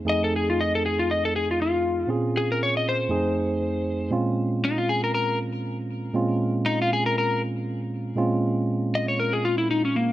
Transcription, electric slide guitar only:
X:1
M:4/4
L:1/16
Q:"Swing 16ths" 1/4=118
K:Bbm
V:1 name="Electric slide guitar"
e =A ^G F e A G F e A G F F4 | z2 A B d e c8- c2 | z4 E F A B B2 z6 | z4 E F A B B2 z6 |
z6 e d B A F =E _E D B,2 |]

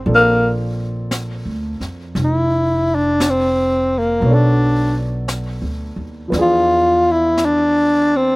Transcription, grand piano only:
X:1
M:4/4
L:1/8
Q:"Swing" 1/4=57
K:Bblyd
V:1 name="Grand piano"
[F,B,CDA]8 | [^F,=B,DA_d]4 [E,=F,=D^G=B]4 |]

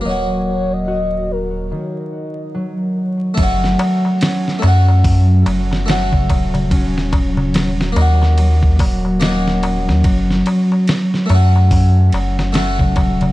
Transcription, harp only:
X:1
M:4/4
L:1/8
Q:"Swing 16ths" 1/4=72
K:F#m
V:1 name="Harp" clef=bass
F, z F2 ^D,2 F, z | F,2 C2 F, z F,2 | C2 F, z F,2 C2 | F, z F,2 C2 F, z |]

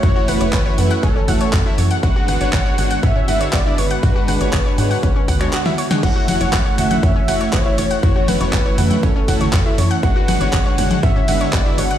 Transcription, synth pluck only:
X:1
M:4/4
L:1/16
Q:1/4=120
K:F#m
V:1 name="Synth pluck"
F F f c c c f f C C f c F E c f | F F f c c c f f C C f c F E c f | F F f c c c f f C C f c F E c f | F F f c c c f f C C f c F E c f |
F F f c c c f f C C f c F E c f | F F f c c c f f C C f c F E c f |]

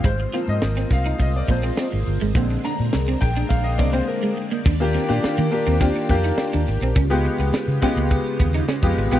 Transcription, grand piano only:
X:1
M:4/4
L:1/16
Q:1/4=104
K:Eb
V:1 name="Grand piano"
c3 e3 f2 e d c6 | z2 b4 g2 f e d c B4 | z [B,DFG]2 [B,DFG]2 z [B,DFG]2 [B,DFG]2 [B,DFG]4- [B,DFG] z | z [A,_CFG]4 z [A,CFG]4- [A,CFG] z2 [A,CFG]2 [A,CFG] |]
V:2 name="Grand piano"
z2 [F,B,C]6 z2 [F,B,C]2 z4 | [D,A,C]6 z4 [D,A,C]2 z4 | z16 | z16 |]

